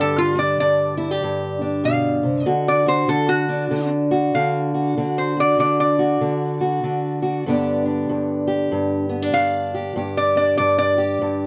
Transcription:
Already playing: D3
0.00 G2 G4 A4
0.18 F4
0.35 D4 D5
0.60 G2 D5
0.97 E4
1.11 G4
1.23 G2
1.61 D4
1.84 B2 F5
2.23 C3
2.42 D3 D#5
2.46 F#4
2.68 D5
2.86 F#4 C5
3.08 D3 A4
3.29 F#4
3.49 D4
3.71 D3
4.11 F#4
4.35 D3 F5
4.74 F#4
4.98 D3 F#4
5.18 C5
5.36 F#4 D5
5.59 D3 D5
5.80 D5
5.99 F#4
6.21 D3
6.61 F#4
6.83 D3
7.22 F#4
7.46 G2 D3 B3 D4 G4
7.86 D4
8.09 G2
8.47 G4
8.72 G2
9.09 B3
9.22 D4
9.34 G2 F5
9.74 G4
9.96 G2 G4
10.17 D5
10.36 D4 D5
10.57 G2 D5
10.78 D5
10.98 G4
11.21 G2

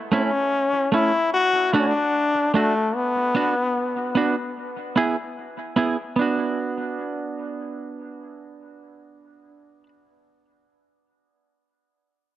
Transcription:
0.12 A3 C#4 E4
0.92 A3 C#4 E4
1.33 F#4
1.73 A3 D4 F#4
1.80 C#4
1.88 D4
2.54 A3 D4 F#4
2.95 B3
3.35 B3 D4 F#4
4.15 B3 D4 F#4
4.96 B3 E4 G#4
5.76 B3 E4 G#4
6.16 B3 D4
6.21 F#4

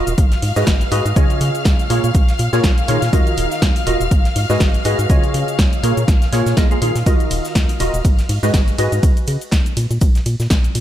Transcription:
Already playing: F4 F#4 A#4 D#5 F5 F6
0.07 D#1, closed hi-hat, shaker
0.18 G#1, kick, closed hi-hat, shaker
0.32 snare, closed hi-hat, shaker
0.42 G#2, open hi-hat
0.56 G#2 G#3 F#4 G#4 B4 D#5, snare, closed hi-hat, shaker
0.67 G#1, kick, snare, closed hi-hat, shaker
0.81 closed hi-hat, shaker
0.91 G#2 F#4 G#4 B4 D#5, open hi-hat, shaker
1.06 G#2, closed hi-hat, shaker
1.16 C#2 C#3 F4 G#4 C#5 D#5, kick, closed hi-hat, shaker
1.30 closed hi-hat, shaker
1.41 C#3, open hi-hat, shaker
1.55 closed hi-hat, shaker
1.65 C#2, kick, snare, closed hi-hat, shaker
1.79 closed hi-hat, shaker
1.90 A#2 A#3 F4 G#4 A#4 C#5, open hi-hat, shaker
2.04 A#2, closed hi-hat, shaker
2.14 A#1, kick, closed hi-hat, shaker
2.28 snare, closed hi-hat, shaker
2.38 A#2, open hi-hat, shaker
2.53 A#2 A#3 F4 G#4 A#4 C#5, snare, closed hi-hat, shaker
2.64 A#1, kick, snare, closed hi-hat, shaker
2.78 closed hi-hat, shaker
2.88 A#2 D#3 F4 G#4 A#4 C#5, open hi-hat, shaker
3.02 A#2, snare, open hi-hat, shaker
3.13 D#2 D#3 F4 F#4 A#4 D#5, kick, closed hi-hat, shaker
3.27 closed hi-hat, shaker
3.37 D#1, open hi-hat, shaker
3.51 snare, closed hi-hat, shaker
3.62 D#2, kick, snare, closed hi-hat, shaker
3.76 closed hi-hat, open hi-hat, shaker
3.87 D#1 F4 F#4 A#4 D#5, open hi-hat, shaker
4.00 D#1, closed hi-hat, shaker
4.11 G#1, kick, closed hi-hat, shaker
4.25 snare, closed hi-hat, shaker
4.36 G#2, open hi-hat
4.50 G#2 G#3 F#4 G#4 B4 D#5, snare, closed hi-hat, shaker
4.60 G#1, kick, snare, closed hi-hat, shaker
4.74 closed hi-hat, shaker
4.84 G#2 F#4 G#4 B4 D#5, open hi-hat, shaker
4.99 G#2, closed hi-hat, shaker
5.10 C#2 C#3 F4 G#4 C#5 D#5, kick, closed hi-hat, shaker
5.23 closed hi-hat, shaker
5.34 C#3, open hi-hat, shaker
5.48 closed hi-hat, shaker
5.59 C#2, kick, snare, closed hi-hat, shaker
5.73 closed hi-hat, shaker
5.83 A#2 A#3 F4 G#4 A#4 C#5, open hi-hat, shaker
5.97 A#2, closed hi-hat, shaker
6.08 A#1, kick, snare, closed hi-hat, shaker
6.22 snare, closed hi-hat, shaker
6.33 A#2 A#3 F4 G#4 A#4 C#5, snare, open hi-hat, shaker
6.46 A#2, snare, closed hi-hat, shaker
6.57 A#1 A#3 F4 G#4 A#4 D#5, kick, snare, closed hi-hat, shaker
6.71 A#3 F4 G#4 A#4 F5, closed hi-hat, shaker
6.82 A#2 D#3 F4 G#4 A#4 F5, open hi-hat, shaker
6.95 A#2, snare, open hi-hat, shaker
7.06 D#2 D#3 F4 F#4 A#4 D#5, kick, closed hi-hat, ride, shaker
7.20 closed hi-hat, shaker
7.31 D#1, open hi-hat, ride, shaker
7.45 snare, closed hi-hat, shaker
7.55 D#2, kick, snare, closed hi-hat, ride, shaker
7.69 closed hi-hat, open hi-hat, shaker
7.80 D#1 F4 F#4 A#4 D#5, open hi-hat, ride, shaker
7.94 D#1, closed hi-hat, shaker
8.05 G#1, kick, closed hi-hat, ride, shaker
8.19 snare, closed hi-hat, shaker
8.29 G#2, open hi-hat, ride
8.43 G#2 G#3 F#4 G#4 B4 D#5, snare, closed hi-hat, shaker
8.54 G#1, kick, snare, closed hi-hat, ride, shaker
8.68 closed hi-hat, shaker
8.78 G#2 F#4 G#4 B4 D#5, open hi-hat, ride, shaker
8.92 G#2, closed hi-hat, shaker
9.03 C#2, kick, closed hi-hat, ride, shaker
9.17 closed hi-hat, shaker
9.27 C#3, open hi-hat, ride, shaker
9.41 closed hi-hat, shaker
9.52 C#2, kick, snare, closed hi-hat, ride, shaker
9.66 closed hi-hat, shaker
9.77 A#2, open hi-hat, ride, shaker
9.91 A#2, closed hi-hat, shaker
10.01 A#1, kick, closed hi-hat, ride, shaker
10.15 snare, closed hi-hat, shaker
10.26 A#2, open hi-hat, ride, shaker
10.40 A#2, snare, closed hi-hat, shaker
10.50 A#1, kick, snare, closed hi-hat, ride, shaker
10.64 closed hi-hat, shaker
10.75 A#2, open hi-hat, ride, shaker

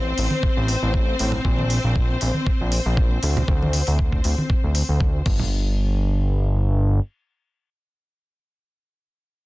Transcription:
Already playing: A1 C4 C5
0.18 A1, open hi-hat
0.31 high conga
0.43 kick
0.57 A1
0.68 open hi-hat
0.83 A1
0.94 kick
1.19 A1, open hi-hat
1.32 low conga
1.45 A#1, kick
1.59 high conga
1.70 open hi-hat
1.84 A#1
1.96 kick
2.21 A#1, open hi-hat
2.34 high conga
2.47 A#1, kick
2.61 A#1
2.72 open hi-hat
2.86 A#1
2.97 kick
3.23 D2, open hi-hat
3.37 low conga
3.48 D2, kick
3.62 high conga
3.73 open hi-hat
3.87 D2, open hi-hat
3.99 kick
4.12 kick
4.24 D2, open hi-hat
4.38 high conga
4.50 kick
4.64 D2
4.75 open hi-hat
4.89 D2
5.00 kick
5.26 G1, kick, crash
5.39 low conga

